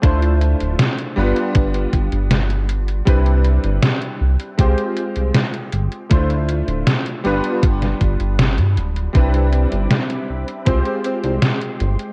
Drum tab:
HH |xxxxxx-xxxxxxxxx|xxxxxx-xxxxxxxxx|xxxxxxxxxxxxxxxx|xxxxxx-xxxxxxxxx|
SD |----o-------o---|----o-------o---|----o----o--o---|----o-------o---|
BD |o-------o-o-----|o-------o-------|o-------o-o-----|o-------o-------|